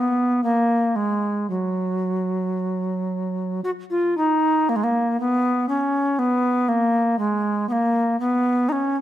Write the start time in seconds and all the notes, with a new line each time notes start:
0.00 B3
0.44 A#3
0.96 G#3
1.50 F#3
3.64 F#4
3.90 F4
4.17 D#4
4.69 A#3
4.76 G#3
4.84 A#3
5.20 B3
5.69 C#4
6.19 B3
6.69 A#3
7.19 G#3
7.69 A#3 B3
8.20 B3
8.69 C#4 D#4